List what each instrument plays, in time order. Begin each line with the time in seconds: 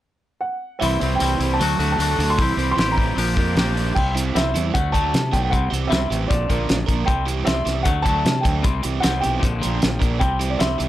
0.41 upright piano F#5
0.79 fingered electric bass C2, clean electric guitar C3 G3, overdriven electric guitar E3, upright piano E5, open hi-hat
0.83 clean electric guitar C4 E4
1.00 fingered electric bass C2, clean electric guitar G3 C4 E4, overdriven electric guitar C4, open hi-hat
1.15 upright piano G5
1.20 fingered electric bass C2, clean electric guitar C3 G3 C4 E4, overdriven electric guitar E3, open hi-hat
1.39 fingered electric bass C2, overdriven electric guitar C4, clean electric guitar C4 E4, open hi-hat
1.44 clean electric guitar G3
1.54 upright piano A5
1.59 fingered electric bass D2, clean electric guitar D3 F#3 A3 D4 F#4, overdriven electric guitar F#3, open hi-hat
1.79 fingered electric bass D2, overdriven electric guitar A3, clean electric guitar A3 D4 F#4, open hi-hat
1.92 upright piano A5
1.98 fingered electric bass D2, clean electric guitar F#3 A3 D4 F#4, overdriven electric guitar A4, open hi-hat
2.19 fingered electric bass D2, overdriven electric guitar D4, open hi-hat
2.30 upright piano C6
2.37 fingered electric bass C2, clean electric guitar C3 G3 C4 E4, overdriven electric guitar E3, kick, open hi-hat
2.42 clean electric guitar G4
2.57 fingered electric bass C2, overdriven electric guitar C4, clean electric guitar C4 E4 G4, open hi-hat
2.71 upright piano C6
2.76 fingered electric bass A1, clean electric guitar C3 G3 C4 E4, overdriven electric guitar E3, snare, open hi-hat
2.80 clean electric guitar G4
2.92 upright piano A#5
2.96 overdriven electric guitar C4, clean electric guitar C4 E4 G4, kick, open hi-hat
3.15 fingered electric bass A#1, clean electric guitar A#2 D3 F3 A#3 D4 G4, overdriven electric guitar F3, open hi-hat
3.36 fingered electric bass F2, clean electric guitar F3 A#3 D4 G4, overdriven electric guitar A#3, kick, open hi-hat
3.55 fingered electric bass A#1, clean electric guitar F3 A#3 D4 G4, overdriven electric guitar G4, snare, open hi-hat
3.76 overdriven electric guitar D4, open hi-hat
3.95 fingered electric bass C2, clean electric guitar C3 G3 C4, upright piano G5, kick, crash
4.15 clean electric guitar C3 G3, overdriven electric guitar G3 C4 E4, closed hi-hat
4.35 fingered electric bass C2, clean electric guitar C3 G3 C4, upright piano E5, snare, closed hi-hat
4.54 fingered electric bass E2, clean electric guitar C3 G3, overdriven electric guitar G3 C4 E4, closed hi-hat
4.74 fingered electric bass D2, clean electric guitar D3 F#3 A3, upright piano F#5, kick, closed hi-hat
4.92 clean electric guitar D3 F#3 A3, overdriven electric guitar A3 D4 F#4, upright piano A5, kick, closed hi-hat
5.13 fingered electric bass C3, clean electric guitar D3 F#3, snare, closed hi-hat
5.32 fingered electric bass B1, clean electric guitar D3 F#3, overdriven electric guitar A3 D4 F#4, upright piano G5, kick, closed hi-hat
5.42 upright piano G5
5.50 fingered electric bass C2, clean electric guitar C3 G3 C4, upright piano F#5, kick, closed hi-hat
5.70 fingered electric bass C2, clean electric guitar C3 G3, overdriven electric guitar E3 C4 E4 G4, closed hi-hat
5.87 clean electric guitar C3 G3 C4, upright piano E5
5.92 fingered electric bass C2, snare, closed hi-hat
6.10 fingered electric bass A1, clean electric guitar C3 G3, overdriven electric guitar E3 C4 E4 G4, closed hi-hat
6.28 fingered electric bass A#1, clean electric guitar A#2 D3 F3, upright piano D5, kick, closed hi-hat
6.48 fingered electric bass A#1, clean electric guitar A#2 D3 F3, overdriven electric guitar F3 A#3 D4 A#4, kick, closed hi-hat
6.69 fingered electric bass A#1, clean electric guitar A#2 D3, snare, closed hi-hat
6.87 fingered electric bass A#1, clean electric guitar A#2 D3, overdriven electric guitar F3 A#3 D4 A#4, kick, closed hi-hat
7.05 fingered electric bass C2, clean electric guitar C3 G3 C4, upright piano G5, kick, closed hi-hat
7.26 clean electric guitar C3 G3, overdriven electric guitar E3 C4 E4 G4, closed hi-hat
7.45 fingered electric bass C2, clean electric guitar C3 G3 C4, upright piano E5, snare, closed hi-hat
7.65 fingered electric bass C2, clean electric guitar C3 G3, overdriven electric guitar E3 C4 E4 G4, snare, closed hi-hat
7.83 fingered electric bass D2, clean electric guitar D3 F#3 A3, upright piano F#5, kick, closed hi-hat
8.02 clean electric guitar D3 F#3 A3, overdriven electric guitar F#3 A3 D4 A4, upright piano A5, kick, closed hi-hat
8.25 fingered electric bass C3, clean electric guitar D3 F#3, snare, closed hi-hat
8.41 clean electric guitar D3, overdriven electric guitar A3 D4 A4, upright piano G5
8.45 fingered electric bass D2, clean electric guitar F#3, overdriven electric guitar F#3, kick, closed hi-hat
8.62 fingered electric bass C2, clean electric guitar C3 G3 C4, kick, closed hi-hat
8.82 fingered electric bass C2, clean electric guitar C3 G3, overdriven electric guitar E3 C4 E4 G4, closed hi-hat
9.00 clean electric guitar C3 G3 C4, upright piano F#5, snare, closed hi-hat
9.04 fingered electric bass C2
9.20 clean electric guitar C3 G3, overdriven electric guitar E3 C4 E4 G4, upright piano G5, closed hi-hat
9.25 fingered electric bass B1
9.39 clean electric guitar A#2 D3 F3, kick, closed hi-hat
9.43 fingered electric bass A#1
9.59 clean electric guitar A#2 D3 F3, overdriven electric guitar D4 A#4
9.63 fingered electric bass A#1, overdriven electric guitar F3 A#3, closed hi-hat
9.79 clean electric guitar A#2 D3, snare, closed hi-hat
9.84 fingered electric bass A#1
9.99 fingered electric bass A#1, clean electric guitar A#2 D3, overdriven electric guitar F3 A#3 D4 A#4, kick, closed hi-hat
10.19 fingered electric bass C2, clean electric guitar C3 G3 C4, upright piano G5, kick, closed hi-hat
10.40 clean electric guitar C3 G3, overdriven electric guitar E3 C4 E4 G4, closed hi-hat
10.50 upright piano D5
10.59 fingered electric bass C2, clean electric guitar C3 G3 C4, upright piano E5, snare, closed hi-hat
10.79 fingered electric bass C2, overdriven electric guitar E3 C4 E4 G4, clean electric guitar G3, closed hi-hat